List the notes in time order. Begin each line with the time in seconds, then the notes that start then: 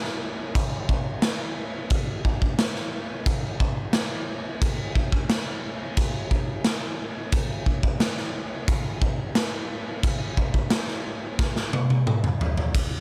0.04 snare
0.55 kick, crash
0.89 kick
1.22 snare, crash
1.90 kick, crash
2.25 kick
2.42 kick
2.59 snare, crash
2.75 snare
3.26 kick, crash
3.60 kick
3.93 snare, crash
4.62 kick, crash
4.95 kick
5.12 kick
5.29 snare, crash
5.97 kick, crash
6.31 kick
6.64 snare, crash
7.32 kick, crash
7.66 kick
7.83 kick
8.00 snare, crash
8.17 snare
8.68 kick, crash
9.02 kick
9.35 snare, crash
10.03 kick, crash
10.37 kick
10.54 kick
10.70 snare, crash
10.88 snare
11.39 kick, snare
11.56 snare
11.73 high tom
11.90 high tom
12.07 mid tom
12.24 mid tom
12.41 floor tom
12.57 floor tom
12.75 kick, ride